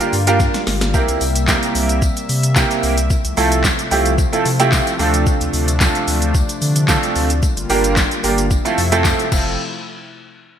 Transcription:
Already playing: D3 G3 A#3 F4
0.00 A#3 D4 F4 G4 A#4, closed hi-hat, shaker
0.13 G2, open hi-hat, shaker
0.27 A#3 D4 F4 G4 A#4, closed hi-hat, shaker
0.40 kick, snare, shaker
0.54 snare, closed hi-hat, shaker
0.67 G1, snare, open hi-hat, shaker
0.81 snare, closed hi-hat, shaker
0.94 C3 A#3 C4 E4 G4 A#4 E5, kick, tambourine, shaker
1.08 C2, closed hi-hat, shaker
1.21 C2, open hi-hat, tambourine, shaker
1.35 closed hi-hat, tambourine, shaker
1.48 A#3 C4 E4 G4 A#4, kick, snare, clap, tambourine, shaker
1.63 closed hi-hat, shaker
1.75 C2, open hi-hat, tambourine, shaker
1.89 closed hi-hat, shaker
2.02 kick, tambourine, shaker
2.17 closed hi-hat, tambourine, shaker
2.29 C3, open hi-hat, tambourine, shaker
2.43 closed hi-hat, shaker
2.56 A#3 C4 E4 G4 A#4, kick, snare, clap, tambourine, shaker
2.71 closed hi-hat, tambourine, shaker
2.83 C2, open hi-hat, tambourine, shaker
2.98 closed hi-hat, shaker
3.10 F3 A3, kick, tambourine, shaker
3.25 C2, closed hi-hat, shaker
3.37 C2 A3 C4 E4 F4 A4, open hi-hat, tambourine, shaker
3.52 closed hi-hat, shaker
3.64 kick, snare, clap, tambourine, shaker
3.79 closed hi-hat, shaker
3.91 C2 A3 C4 E4 F4 G4, open hi-hat, tambourine, shaker
4.06 closed hi-hat, shaker
4.18 kick, tambourine, shaker
4.32 A3 C4 E4 F4 A4, closed hi-hat, shaker
4.45 C3, open hi-hat, tambourine, shaker
4.60 A3 C4 E4 F4 G4, closed hi-hat, tambourine, shaker
4.72 kick, snare, clap, tambourine, shaker
4.87 closed hi-hat, tambourine, shaker
4.99 D2 A3 C4 D4 F4 A4, open hi-hat, tambourine, shaker
5.14 closed hi-hat, shaker
5.27 kick, tambourine, shaker
5.41 D2, closed hi-hat, shaker
5.53 D2, open hi-hat, tambourine, shaker
5.68 closed hi-hat, tambourine, shaker
5.80 A3 C4 D4 F4 A4, kick, snare, clap, tambourine, shaker
5.95 closed hi-hat, shaker
6.08 D2, open hi-hat, tambourine, shaker
6.22 closed hi-hat, shaker
6.35 kick, tambourine, shaker
6.49 closed hi-hat, tambourine, shaker
6.62 D3, open hi-hat, tambourine, shaker
6.76 closed hi-hat, shaker
6.88 A3 C4 D4 F4 A4, kick, snare, clap, tambourine, shaker
7.03 closed hi-hat, shaker
7.16 D2, open hi-hat, tambourine, shaker
7.30 closed hi-hat, shaker
7.43 D3 G3 A#3 F4, kick, tambourine, shaker
7.57 G1, closed hi-hat, shaker
7.70 G1 A#3 D4 F4 G4 A#4, open hi-hat, tambourine, shaker
7.84 closed hi-hat, tambourine, shaker
7.97 kick, snare, clap, tambourine, shaker
8.11 closed hi-hat, shaker
8.23 G1 A#3 D4 F4 G4 A#4, open hi-hat, tambourine, shaker
8.38 closed hi-hat, shaker
8.51 C3 F3 A3 E5, kick, tambourine, shaker
8.65 A3 C4 E4 F4 A4, closed hi-hat, tambourine, shaker
8.78 F2, open hi-hat, tambourine, shaker
8.92 A3 C4 E4 F4 A4, closed hi-hat, shaker
9.05 kick, snare, clap, tambourine, shaker
9.19 closed hi-hat, shaker
9.32 F1 C3 F3 A3 C4 E4 F4 A4, kick, crash, tambourine

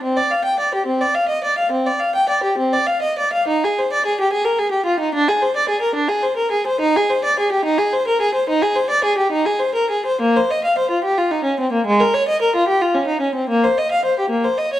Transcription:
0.03 C4
0.17 D5
0.31 F5
0.45 G5
0.60 D5
0.75 G4
0.86 C4
1.01 D5
1.15 F5
1.29 D#5
1.44 D5
1.58 F5
1.72 C4
1.86 D5
1.99 F5
2.15 G5
2.29 D5
2.43 G4
2.58 C4
2.73 D5
2.87 F5
3.02 D#5
3.19 D5
3.33 F5
3.48 D#4
3.64 G#4
3.79 C5
3.93 D5
4.06 G#4
4.21 G4
4.33 G#4
4.45 A#4
4.59 G#4
4.71 G4
4.86 F4
5.00 D#4
5.14 D4
5.28 G#4
5.42 C5
5.56 D5
5.69 G#4
5.81 A#4
5.95 D4
6.08 G#4
6.23 C5
6.37 A#4
6.51 G#4
6.67 C5
6.81 D#4
6.97 G#4
7.10 C5
7.24 D5
7.39 G#4
7.52 G4
7.65 D#4
7.78 G#4
7.93 C5
8.07 A#4
8.21 G#4
8.34 C5
8.49 D#4
8.62 G#4
8.76 C5
8.90 D5
9.04 G#4
9.18 G4
9.32 D#4
9.45 G#4
9.59 C5
9.75 A#4
9.90 G#4
10.06 C5
10.21 A#3
10.37 C5
10.51 D#5
10.64 F5
10.78 C5
10.91 F4
11.04 G4
11.18 F4
11.31 D#4
11.44 C#4
11.60 C4
11.72 A#3
11.86 G#3
12.00 A#4
12.14 C#5
12.28 D#5
12.42 A#4
12.56 F4
12.68 G4
12.82 F4
12.95 C#4
13.07 D#4
13.21 C#4
13.35 C4
13.49 A#3
13.64 C5
13.78 D#5
13.92 F5
14.05 C5
14.19 G4
14.30 A#3
14.44 C5
14.58 D#5
14.73 C#5

